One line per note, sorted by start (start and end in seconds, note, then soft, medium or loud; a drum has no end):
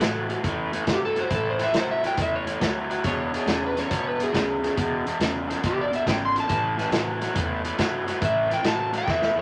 0.00 0.33 A1 loud
0.00 0.26 A2 medium
0.00 0.26 F#3 medium
0.00 0.41 A4 medium
0.00 snare loud
0.00 closed hi-hat medium
0.29 0.42 A2 medium
0.29 0.42 F#3 medium
0.29 closed hi-hat medium
0.43 0.76 E2 medium
0.43 0.70 A2 medium
0.43 0.70 E3 medium
0.43 kick loud
0.43 snare soft
0.43 closed hi-hat medium
0.72 0.85 A2 medium
0.72 0.86 E3 medium
0.72 closed hi-hat medium
0.86 1.20 G2 medium
0.86 1.13 A2 medium
0.86 1.14 F#3 medium
0.86 kick medium
0.86 snare loud
0.86 closed hi-hat medium
0.92 1.04 G4 medium
1.05 1.18 A4 medium
1.16 1.29 A2 medium
1.16 1.30 F#3 medium
1.16 closed hi-hat medium
1.21 1.33 C5 medium
1.30 1.64 A1 medium
1.30 1.57 A2 medium
1.30 1.57 E3 medium
1.30 kick loud
1.30 closed hi-hat medium
1.35 1.47 A4 medium
1.50 1.62 C5 medium
1.59 1.72 A2 medium
1.59 1.72 E3 medium
1.59 snare soft
1.59 closed hi-hat medium
1.64 1.76 E5 medium
1.73 2.06 A1 medium
1.73 2.00 A2 medium
1.73 2.00 F#3 medium
1.73 snare loud
1.73 closed hi-hat medium
1.78 1.90 C5 medium
1.91 2.04 E5 medium
2.03 2.16 A2 medium
2.03 2.16 F#3 medium
2.03 2.19 G5 medium
2.03 snare soft
2.03 closed hi-hat medium
2.17 2.50 E2 medium
2.17 2.44 A2 medium
2.17 2.44 E3 medium
2.17 kick loud
2.17 snare soft
2.17 closed hi-hat medium
2.22 2.34 E5 medium
2.36 2.76 C#5 medium
2.46 2.59 A2 medium
2.46 2.60 E3 medium
2.46 closed hi-hat medium
2.60 2.94 D2 medium
2.60 2.87 A2 medium
2.60 2.87 F#3 medium
2.60 kick medium
2.60 snare medium
2.60 closed hi-hat medium
2.89 3.02 A2 medium
2.89 3.03 F#3 medium
2.89 closed hi-hat medium
3.04 3.37 E1 medium
3.04 3.31 E2 medium
3.04 3.31 B2 medium
3.04 3.22 D4 medium
3.04 3.22 F#4 medium
3.04 3.22 G#4 medium
3.04 3.62 C#5 loud
3.04 kick loud
3.04 closed hi-hat medium
3.33 3.45 E2 medium
3.33 3.46 B2 medium
3.33 3.82 D4 medium
3.33 3.83 F#4 medium
3.33 3.83 G#4 medium
3.33 closed hi-hat medium
3.46 3.79 E1 medium
3.46 3.73 E2 medium
3.46 3.74 C#3 medium
3.46 snare loud
3.46 closed hi-hat medium
3.66 3.78 B4 medium
3.76 3.89 E2 medium
3.76 3.89 C#3 medium
3.76 3.92 C#5 medium
3.76 snare soft
3.76 closed hi-hat medium
3.90 4.24 B1 medium
3.90 4.17 E2 medium
3.90 4.17 B2 medium
3.90 4.06 C#5 medium
3.90 kick loud
3.90 snare soft
3.90 closed hi-hat medium
4.07 4.20 B4 medium
4.19 4.31 E2 medium
4.19 4.32 B2 medium
4.19 5.05 G#4 medium
4.19 closed hi-hat medium
4.32 4.66 D2 medium
4.32 4.59 E2 medium
4.32 4.60 C#3 medium
4.32 kick medium
4.32 snare medium
4.32 closed hi-hat medium
4.63 4.75 E2 medium
4.63 4.76 C#3 medium
4.63 snare soft
4.63 closed hi-hat medium
4.76 5.10 E1 medium
4.76 5.03 E2 medium
4.76 5.03 B2 medium
4.76 kick loud
4.76 closed hi-hat medium
5.06 5.19 E2 medium
5.06 5.19 B2 medium
5.06 closed hi-hat medium
5.20 5.53 E1 medium
5.20 5.47 E2 medium
5.20 5.47 C#3 medium
5.20 snare loud
5.20 closed hi-hat medium
5.48 5.62 E2 medium
5.48 5.62 C#3 medium
5.48 snare soft
5.48 closed hi-hat medium
5.63 5.96 B1 medium
5.63 5.90 E2 medium
5.63 5.90 B2 medium
5.63 5.79 G4 medium
5.63 kick loud
5.63 snare soft
5.63 closed hi-hat medium
5.81 5.94 D5 medium
5.92 6.05 E2 medium
5.92 6.05 B2 medium
5.92 6.08 E5 medium
5.92 closed hi-hat medium
6.06 6.39 G#1 medium
6.06 6.33 E2 medium
6.06 6.33 C#3 medium
6.06 6.22 G5 medium
6.06 kick medium
6.06 snare loud
6.06 closed hi-hat medium
6.25 6.37 C6 loud
6.35 6.48 E2 medium
6.35 6.47 C#3 medium
6.35 snare soft
6.35 closed hi-hat medium
6.40 7.63 A5 medium
6.48 6.82 A1 medium
6.48 6.75 A2 medium
6.48 6.75 E3 medium
6.48 6.67 C#4 medium
6.48 6.67 G4 medium
6.48 6.67 B4 medium
6.48 kick loud
6.48 closed hi-hat medium
6.77 6.91 A2 medium
6.77 6.91 E3 medium
6.77 7.27 C#4 medium
6.77 7.27 G4 medium
6.77 7.28 B4 medium
6.77 snare soft
6.77 closed hi-hat medium
6.91 7.24 A1 loud
6.91 7.18 A2 medium
6.91 7.18 F#3 medium
6.91 snare loud
6.91 closed hi-hat medium
7.21 7.33 A2 medium
7.21 7.34 F#3 medium
7.21 snare soft
7.21 closed hi-hat medium
7.34 7.68 E2 medium
7.34 7.61 A2 medium
7.34 7.61 E3 medium
7.34 kick loud
7.34 snare soft
7.34 closed hi-hat medium
7.64 7.76 A2 medium
7.64 7.77 E3 medium
7.64 closed hi-hat medium
7.77 8.11 G2 medium
7.77 8.04 A2 medium
7.77 8.04 F#3 medium
7.77 kick medium
7.77 snare loud
7.77 closed hi-hat medium
8.06 8.19 A2 medium
8.06 8.20 F#3 medium
8.06 snare soft
8.06 closed hi-hat medium
8.20 8.54 A1 medium
8.20 8.47 A2 medium
8.20 8.47 E3 loud
8.20 kick loud
8.20 closed hi-hat medium
8.25 8.51 E5 loud
8.49 8.62 A2 medium
8.49 8.63 E3 loud
8.49 snare soft
8.49 closed hi-hat medium
8.54 8.66 G5 medium
8.63 8.96 A1 loud
8.63 8.90 A2 medium
8.63 8.90 F#3 loud
8.63 snare loud
8.63 closed hi-hat medium
8.68 8.94 A5 medium
8.93 9.05 A2 medium
8.93 9.06 F#3 medium
8.93 snare soft
8.93 closed hi-hat medium
8.98 9.09 G5 medium
9.06 9.40 E2 loud
9.06 9.33 A2 medium
9.06 9.33 E3 medium
9.06 kick loud
9.06 snare medium
9.10 9.37 E5 medium
9.22 snare medium
9.35 9.42 A2 medium
9.35 9.42 E3 medium